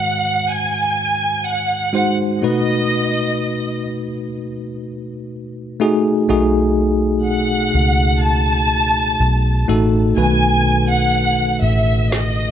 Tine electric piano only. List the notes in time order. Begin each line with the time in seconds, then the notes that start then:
Already playing: G#2 D#3 G#3 F#4 C5
1.93 G#3 D#4 F#4 C5
2.42 B2 A3 D#4 F#4 B4
5.80 A3 D#4 F#4 G#4
6.29 B2 A3 D#4 F#4 G#4
9.68 A3 D#4 F#4 A4
10.17 B2 D#3 A3 F#4 B4